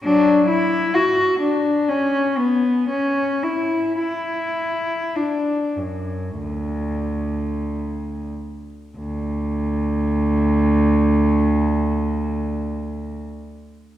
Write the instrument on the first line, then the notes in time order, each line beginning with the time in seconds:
cello
0.04 F#3 D4
0.49 E4
0.94 F#4
1.40 D4
1.89 C#4
2.38 B3
2.90 C#4
3.43 E4
3.99 E4
5.16 D4
5.76 F#2
6.38 D2
8.97 D2